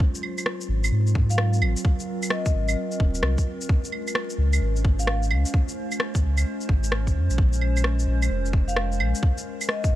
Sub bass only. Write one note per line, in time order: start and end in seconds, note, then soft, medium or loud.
0.69 0.91 G#1 medium
0.92 1.63 G#2 medium
1.61 1.75 G#1 medium
2.54 2.75 G#1 medium
3.00 3.22 D#1 medium
3.23 3.37 C2 medium
4.38 4.60 C#2 loud
4.61 5.33 G#1 loud
5.31 5.45 C#2 medium
6.23 6.45 C#2 loud
6.69 7.16 G#1 medium
7.15 7.29 F2 medium
7.30 8.06 A#1 loud
8.07 8.29 A#1 loud
8.30 9.01 F1 loud
9.00 9.14 A#1 loud
9.91 9.96 A#1 medium